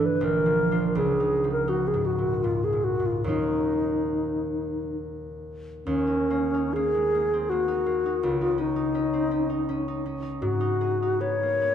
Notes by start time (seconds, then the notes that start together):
Already playing: G2 D3 E3 A3 D4
0.06 B4
0.21 A#1 A#4
0.46 F3
0.71 D4 F4
0.95 C#2 G#4
1.20 D#4
1.44 F3
1.52 A#4
1.68 D#4 F#4
1.88 G#4
1.94 G#2
2.06 F#4
2.18 A#2
2.44 G#2 F4
2.64 G#4
2.73 A#2
2.84 F#4
3.00 G#2
3.06 F4
3.24 D#2 F#3 C#4 D#4
3.29 F4
5.86 D#2 C#4
6.07 D#4
6.30 A#3
6.54 D#4
6.73 A#3 G#4
6.95 G#3
7.15 A#3
7.33 C4
7.50 A#3 F#4
7.68 D#4
7.86 A#3
8.06 D#4
8.23 C#2 F4
8.41 D#4
8.58 C#4 D#4
8.76 D#4
8.95 C#4
9.13 C4
9.31 C#4
9.49 D#4
9.69 C#4
9.88 D#4
10.06 C#4
10.22 D#4
10.42 G#2 F#4
10.60 D#4
10.81 G#4
11.02 D#4
11.21 B3 C#5
11.43 A#3
11.62 B3